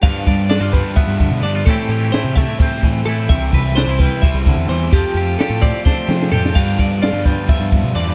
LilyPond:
<<
  \new Staff \with { instrumentName = "Clean electric guitar" } { \time 7/8 \key g \mixolydian \tempo 4 = 129 f''4 d''8 b'8 e''4 d''8 | a'4 c''8 e''8 c''4 a'8 | e''4 c''8 b'8 e''4 c''8 | g'4 a'8 d''8 c''4 a'8 |
f''4 d''8 b'8 e''4 d''8 | }
  \new Staff \with { instrumentName = "Clean electric guitar" } { \time 7/8 \key g \mixolydian << { r8 d''8 d'16 f'8. b4 d'16 f'16 | <a c' e' g'>8 g'8 e'4 c'4 e'8 | r8 b'8 d'16 e'2~ e'16 | r8 g'8 g'4 d'4 g'8~ |
g'8 d''8 f'2~ f'8 | } \\ { g,4. g4 d4 | a,4. a4 e4 | c4. g8 c8 d8 e8 | f4. c'4 c4 |
g,4. g4. g,8 | } >> }
  \new Staff \with { instrumentName = "Overdriven electric guitar" } { \time 7/8 \key g \mixolydian <g, d f b d'>8 <f b d'>8 <d f b d'>8 <f b d'>4. <g, d f b d'>8 | <a, e a c' e'>8 <a c' e'>8 <e a c' e'>8 <a c' e'>4. <a, e a c' e'>8 | <c e g c' e'>8 <g c' e'>8 <e g c' e'>8 <g c' e'>4. <c e g c' e'>8 | <f a c' f'>8 <a c' f'>8 <f a c' f'>8 <a c' f'>4. <f a c' f'>8 |
<g, d f b f'>8 <f b f'>8 <d f b f'>8 <f b f'>4. <g, d f b f'>8 | }
  \new Staff \with { instrumentName = "Picked electric bass" } { \clef bass \time 7/8 \key g \mixolydian g,8 g,8. g,8 r8 g,8 b,16 g,8 | a,16 r16 a,8 r16 c8 r8. a,8 a,8 | c,8 c,8. c,8 r8 c,8 e,16 e,8 | f,16 r16 f,8 r16 a,8 r8. f8 f,8 |
g,8 g,8. g,8 r8 g,8 b,16 e,8 | }
  \new DrumStaff \with { instrumentName = "Drums" } \drummode { \time 7/8 <cymc bd>8 <bd cymr>8 <cymr sn>8 <bd cymr>8 <bd cymr>8 <bd cymr>8 cymr8 | <bd cymr>8 cymr8 <cymr sn>8 <bd cymr sn>8 <bd cymr>8 <bd cymr sn>8 cymr8 | <bd cymr>8 <bd cymr sn>8 <cymr sn>8 <bd cymr>8 <bd cymr>8 <bd cymr sn>8 <cymr sn>8 | <bd cymr>8 cymr8 <cymr sn>8 <bd cymr>8 <bd sn>8 sn16 sn16 tomfh16 sn16 |
<cymc bd cymr>8 <bd cymr>8 <cymr sn>8 <bd cymr>8 <bd cymr>8 <bd cymr>8 cymr8 | }
>>